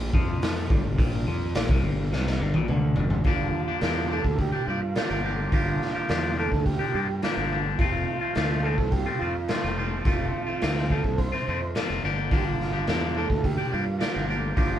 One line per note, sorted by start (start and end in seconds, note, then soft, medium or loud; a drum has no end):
0.00 0.10 A#1 medium
0.00 0.14 A#2 loud
0.00 3.22 G3 medium
0.00 3.22 A#3 medium
0.00 3.22 F4 medium
0.00 3.22 D5 medium
0.14 0.67 F2 medium
0.14 0.70 F3 loud
0.14 kick loud
0.42 snare loud
0.42 open hi-hat medium
0.70 0.84 G1 medium
0.70 0.84 G2 loud
0.70 kick loud
0.85 0.98 G1 medium
0.85 0.99 G2 medium
0.98 1.25 A#1 loud
0.98 1.26 A#2 loud
0.98 kick loud
0.98 open hi-hat medium
1.27 1.54 F2 medium
1.27 1.55 F3 medium
1.55 1.69 A#1 medium
1.55 1.69 A#2 loud
1.55 snare loud
1.55 open hi-hat medium
1.69 1.82 C2 medium
1.69 1.83 C3 loud
1.69 kick loud
1.83 2.10 G1 medium
1.83 2.12 G2 loud
2.12 2.39 C2 medium
2.12 2.40 C3 loud
2.12 snare medium
2.27 snare medium
2.40 2.54 G1 medium
2.40 2.55 G2 medium
2.54 2.68 A#1 medium
2.54 2.69 A#2 loud
2.54 high tom medium
2.68 2.95 D2 medium
2.68 2.97 D3 loud
2.68 mid tom medium
2.96 3.24 G1 medium
2.96 3.23 G2 loud
2.96 floor tom medium
3.10 floor tom medium
3.24 3.51 G1 medium
3.24 3.82 G2 medium
3.24 3.81 D3 medium
3.24 3.70 F3 medium
3.24 3.69 A#3 medium
3.24 3.68 D4 medium
3.24 4.14 F4 medium
3.24 7.76 F4 medium
3.24 7.76 G4 medium
3.24 3.67 G4 medium
3.24 7.76 A#4 medium
3.24 7.76 D5 medium
3.24 kick medium
3.24 open hi-hat soft
3.68 3.83 F3 soft
3.68 3.83 A#3 medium
3.68 3.84 D4 medium
3.68 3.85 G4 medium
3.81 4.21 E2 medium
3.81 4.58 G2 medium
3.81 4.39 D3 medium
3.81 4.10 F3 medium
3.81 4.11 A#3 medium
3.81 4.12 D4 medium
3.81 snare loud
3.81 open hi-hat soft
3.85 4.13 G4 medium
4.11 4.25 F3 medium
4.11 4.24 A#3 medium
4.11 4.24 D4 medium
4.11 4.24 G4 medium
4.11 4.38 A4 medium
4.24 4.51 D2 medium
4.24 muted clean electric guitar stroke soft
4.24 kick medium
4.38 4.70 G4 medium
4.38 kick medium
4.38 open hi-hat soft
4.52 4.66 F3 soft
4.52 4.67 A#3 medium
4.52 4.67 D4 medium
4.52 4.69 G4 medium
4.67 4.93 G2 medium
4.67 4.82 F3 medium
4.67 4.81 A#3 medium
4.67 4.81 D4 medium
4.67 5.22 F4 medium
4.67 4.81 G4 medium
4.82 muted clean electric guitar stroke soft
4.95 5.38 G2 medium
4.95 5.39 D3 medium
4.95 5.12 F3 medium
4.95 5.10 A#3 medium
4.95 5.09 D4 medium
4.95 5.08 G4 medium
4.95 snare loud
4.95 open hi-hat soft
5.09 5.49 G1 medium
5.09 5.23 F3 soft
5.09 5.23 A#3 medium
5.09 5.24 D4 medium
5.09 5.25 G4 medium
5.24 5.52 F3 medium
5.24 5.52 A#3 medium
5.24 5.52 D4 medium
5.24 5.53 G4 medium
5.51 5.78 G1 medium
5.51 6.07 G2 medium
5.51 6.08 D3 medium
5.51 5.97 F3 medium
5.51 5.95 A#3 medium
5.51 5.94 D4 medium
5.51 5.94 G4 medium
5.51 kick medium
5.51 open hi-hat soft
5.55 6.35 F4 medium
5.82 snare soft
5.95 6.09 F3 medium
5.95 6.09 A#3 medium
5.95 6.09 D4 medium
5.95 6.09 G4 medium
6.08 6.48 E2 medium
6.08 6.66 G2 medium
6.08 6.66 D3 medium
6.08 6.36 F3 medium
6.08 6.37 A#3 medium
6.08 6.37 D4 medium
6.08 6.38 G4 medium
6.08 snare loud
6.08 open hi-hat soft
6.36 6.52 F3 medium
6.36 6.52 A#3 medium
6.36 6.51 D4 medium
6.36 6.51 G4 medium
6.36 6.65 A4 medium
6.52 6.78 D2 medium
6.52 muted clean electric guitar stroke soft
6.52 kick medium
6.66 7.07 G4 medium
6.66 kick medium
6.66 open hi-hat soft
6.79 6.93 F3 medium
6.79 6.94 A#3 medium
6.79 6.94 D4 medium
6.79 6.95 G4 medium
6.94 7.20 G2 medium
6.94 7.09 F3 medium
6.94 7.08 A#3 medium
6.94 7.08 D4 medium
6.94 7.07 G4 medium
7.09 7.22 G4 medium
7.09 muted clean electric guitar stroke soft
7.22 7.65 G2 medium
7.22 7.65 D3 medium
7.22 7.39 F3 medium
7.22 7.38 A#3 medium
7.22 7.37 D4 medium
7.22 7.62 F4 medium
7.22 7.36 G4 medium
7.22 snare medium
7.22 open hi-hat soft
7.37 7.76 G1 medium
7.37 7.50 F3 medium
7.37 7.50 A#3 medium
7.37 7.51 D4 medium
7.37 7.52 G4 medium
7.51 7.80 F3 medium
7.51 7.78 A#3 medium
7.51 7.79 D4 medium
7.51 7.79 G4 medium
7.78 8.05 F1 medium
7.78 8.35 F2 medium
7.78 8.34 C3 medium
7.78 8.23 F3 medium
7.78 8.23 A3 medium
7.78 8.22 C4 medium
7.78 7.86 F4 medium
7.78 12.00 F4 medium
7.78 8.21 F4 medium
7.78 12.00 A4 medium
7.78 12.00 C5 medium
7.78 10.04 F5 medium
7.78 kick medium
7.78 open hi-hat soft
7.84 7.93 G4 medium
7.92 8.66 F4 medium
8.21 8.36 F3 soft
8.21 8.37 A3 medium
8.21 8.37 C4 medium
8.21 8.37 F4 medium
8.35 8.75 D2 medium
8.35 8.92 F2 medium
8.35 8.92 C3 medium
8.35 8.63 F3 medium
8.35 8.63 A3 medium
8.35 8.64 C4 medium
8.35 8.65 F4 medium
8.35 snare loud
8.35 open hi-hat soft
8.63 8.79 F3 medium
8.63 8.78 A3 medium
8.63 8.77 C4 medium
8.63 8.78 F4 medium
8.63 8.93 A4 medium
8.78 9.04 C2 medium
8.78 muted clean electric guitar stroke soft
8.78 kick medium
8.92 9.21 G4 medium
8.92 kick medium
8.92 open hi-hat soft
9.06 9.19 F3 medium
9.06 9.20 A3 medium
9.06 9.20 C4 medium
9.06 9.22 F4 medium
9.19 9.47 F2 medium
9.19 9.36 F3 medium
9.19 9.35 A3 medium
9.19 9.34 C4 medium
9.19 9.73 F4 medium
9.19 9.35 F4 medium
9.35 muted clean electric guitar stroke soft
9.48 9.91 F2 medium
9.48 9.92 C3 medium
9.48 9.65 F3 medium
9.48 9.63 A3 medium
9.48 9.62 C4 medium
9.48 9.62 F4 loud
9.48 snare loud
9.48 open hi-hat soft
9.63 10.02 F1 medium
9.63 9.76 F3 medium
9.63 9.76 A3 medium
9.63 9.77 C4 medium
9.63 9.79 F4 medium
9.77 10.06 F3 medium
9.77 10.06 A3 medium
9.77 10.06 C4 medium
9.77 10.07 F4 medium
10.05 10.31 F1 medium
10.05 10.60 F2 medium
10.05 10.60 C3 medium
10.05 10.49 F3 medium
10.05 10.47 A3 medium
10.05 10.47 C4 medium
10.05 10.46 F4 medium
10.05 10.94 F4 medium
10.05 12.02 E5 medium
10.05 kick medium
10.05 open hi-hat soft
10.47 10.61 F3 soft
10.47 10.61 A3 medium
10.47 10.62 C4 medium
10.47 10.63 F4 medium
10.61 11.01 D2 medium
10.61 11.18 F2 medium
10.61 11.18 C3 medium
10.61 10.89 F3 medium
10.61 10.89 A3 medium
10.61 10.90 C4 medium
10.61 10.91 F4 medium
10.61 snare loud
10.61 open hi-hat soft
10.77 snare soft
10.89 11.05 F3 medium
10.89 11.04 A3 medium
10.89 11.03 C4 medium
10.89 11.04 F4 medium
10.89 11.20 A4 medium
10.89 kick medium
11.04 11.30 C2 medium
11.04 muted clean electric guitar stroke soft
11.04 kick medium
11.18 11.71 C5 medium
11.18 kick medium
11.18 open hi-hat soft
11.32 11.47 F3 medium
11.32 11.47 A3 medium
11.32 11.48 C4 medium
11.32 11.49 F4 medium
11.47 11.73 F2 medium
11.47 11.62 F3 medium
11.47 11.61 A3 medium
11.47 11.60 C4 medium
11.47 11.61 F4 medium
11.61 muted clean electric guitar stroke soft
11.75 12.02 F2 medium
11.75 12.02 C3 medium
11.75 11.91 F3 medium
11.75 11.90 A3 medium
11.75 11.89 C4 medium
11.75 11.88 F4 medium
11.75 snare medium
11.75 open hi-hat soft
11.89 12.02 F1 medium
11.89 12.03 F3 medium
11.89 12.03 A3 medium
11.89 12.02 C4 medium
11.89 12.04 F4 medium
12.02 12.84 G1 medium
12.02 12.30 G2 medium
12.02 12.30 D3 medium
12.02 12.31 F3 medium
12.02 12.32 A#3 medium
12.02 12.33 D4 medium
12.02 14.79 G4 medium
12.02 12.33 G4 medium
12.02 14.79 A#4 medium
12.02 14.28 D5 medium
12.02 14.79 F5 medium
12.31 12.87 G2 medium
12.31 12.87 D3 medium
12.31 12.76 F3 medium
12.31 12.75 A#3 medium
12.31 12.74 D4 medium
12.31 12.39 F4 medium
12.31 12.73 G4 medium
12.31 kick loud
12.31 open hi-hat soft
12.37 12.45 G4 medium
12.44 13.18 F4 medium
12.60 snare soft
12.73 12.88 F3 medium
12.73 12.88 A#3 medium
12.73 12.89 D4 medium
12.73 12.89 G4 medium
12.87 13.27 E2 medium
12.87 13.63 G2 medium
12.87 13.44 D3 medium
12.87 13.15 F3 medium
12.87 13.16 A#3 medium
12.87 13.17 D4 medium
12.87 13.18 G4 medium
12.87 snare loud
12.87 open hi-hat soft
13.15 13.30 F3 medium
13.15 13.29 A#3 medium
13.15 13.29 D4 medium
13.15 13.28 G4 medium
13.15 13.46 A4 medium
13.30 13.56 D2 medium
13.30 muted clean electric guitar stroke soft
13.30 kick medium
13.44 13.74 G4 medium
13.44 kick medium
13.44 open hi-hat soft
13.58 13.71 F3 medium
13.58 13.71 A#3 medium
13.58 13.72 D4 medium
13.58 13.72 G4 medium
13.71 13.99 G2 medium
13.71 13.86 F3 medium
13.71 13.85 A#3 medium
13.71 13.86 D4 medium
13.71 14.26 F4 medium
13.71 13.85 G4 medium
13.86 muted clean electric guitar stroke soft
13.99 14.42 G2 medium
13.99 14.43 D3 medium
13.99 14.16 F3 medium
13.99 14.14 A#3 medium
13.99 14.14 D4 medium
13.99 14.12 G4 medium
13.99 snare loud
13.99 open hi-hat soft
14.14 14.54 G1 medium
14.14 14.27 F3 medium
14.14 14.28 A#3 medium
14.14 14.29 D4 medium
14.14 14.29 G4 medium
14.28 14.56 F3 medium
14.28 14.56 A#3 medium
14.28 14.57 D4 medium
14.28 14.57 G4 medium
14.32 14.79 C5 medium
14.56 14.79 G1 medium
14.56 14.79 G2 medium
14.56 14.79 D3 medium
14.56 14.79 F3 medium
14.56 14.79 A#3 medium
14.56 14.79 D4 medium
14.56 14.79 G4 medium
14.56 kick loud
14.56 open hi-hat soft
14.60 14.79 F4 medium